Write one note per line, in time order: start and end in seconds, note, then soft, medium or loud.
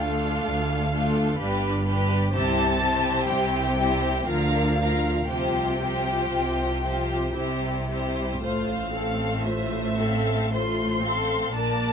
0.00 0.33 D2 medium
0.00 0.34 D2 medium
0.00 0.90 A3 soft
0.00 0.90 D4 soft
0.00 0.90 F4 soft
0.00 0.90 A4 soft
0.00 1.87 F5 medium
0.44 1.29 D2 medium
0.91 1.39 A3 soft
0.91 1.38 D4 soft
0.91 1.39 F4 soft
0.91 1.39 A4 soft
1.38 2.22 G1 medium
1.38 2.23 G2 medium
1.38 1.86 G3 soft
1.38 1.85 D4 soft
1.38 1.84 G4 soft
1.38 1.85 B4 soft
1.85 2.31 G3 soft
1.85 2.32 D4 soft
1.85 2.31 G4 soft
1.85 2.32 B4 soft
2.32 3.17 C2 medium
2.32 3.17 C3 medium
2.32 2.78 G3 soft
2.32 2.78 E4 soft
2.32 2.79 G4 soft
2.32 2.79 C5 soft
2.32 3.25 A5 medium
2.79 3.75 G3 soft
2.79 3.75 E4 soft
2.79 3.76 G4 medium
2.79 3.75 C5 soft
3.28 4.17 C2 medium
3.28 4.16 C3 medium
3.28 4.28 G5 medium
3.77 4.27 G3 soft
3.77 4.27 E4 soft
3.77 4.27 G4 soft
3.77 4.27 C5 soft
4.26 5.17 D2 medium
4.26 5.17 D3 medium
4.26 4.76 F3 soft
4.26 4.77 F4 soft
4.26 4.77 A#4 soft
4.26 5.29 F5 medium
4.26 4.78 F5 soft
4.78 5.27 F3 soft
4.78 5.27 F4 soft
4.78 5.29 A#4 soft
4.78 5.29 F5 soft
5.27 6.20 C2 medium
5.27 6.19 C3 medium
5.27 5.79 F3 soft
5.27 5.79 F4 soft
5.27 5.81 G4 soft
5.27 5.81 C5 soft
5.27 7.85 G5 medium
5.80 6.81 F3 soft
5.80 6.81 F4 soft
5.80 6.82 G4 soft
5.80 6.83 C5 soft
6.30 7.23 C2 soft
6.30 7.22 C3 soft
6.83 7.34 F3 soft
6.83 7.34 F4 soft
6.83 7.35 G4 soft
6.83 7.35 C5 soft
7.33 8.31 C2 soft
7.33 8.29 C3 soft
7.33 7.87 G3 soft
7.33 7.87 E4 soft
7.33 7.88 G4 soft
7.33 7.88 C5 soft
7.88 8.41 G3 soft
7.88 8.41 E4 soft
7.88 8.42 G4 soft
7.88 8.41 C5 soft
8.39 11.51 A1 soft
8.39 11.50 A2 soft
8.39 8.89 A3 soft
8.39 8.89 F4 soft
8.39 8.91 C5 soft
8.39 9.41 F5 medium
8.93 9.45 C4 soft
8.93 9.45 A4 soft
8.93 9.46 A4 soft
8.93 9.46 F5 soft
9.44 9.98 A3 soft
9.44 9.98 F4 soft
9.44 9.98 C5 soft
9.44 10.54 E5 medium
9.97 10.54 C4 soft
9.97 10.53 A4 soft
9.97 10.54 A4 soft
9.97 10.53 F5 soft
10.53 11.02 A3 soft
10.53 11.01 F4 soft
10.53 11.02 C5 soft
10.53 11.53 C6 medium
11.02 11.53 C4 soft
11.02 11.54 A4 soft
11.02 11.55 A4 soft
11.02 11.55 F5 soft
11.52 11.93 A#1 medium
11.52 11.93 A#2 medium
11.52 11.93 A#3 soft
11.52 11.93 D4 soft
11.52 11.93 A#4 soft
11.52 11.93 D5 soft
11.52 11.93 A5 medium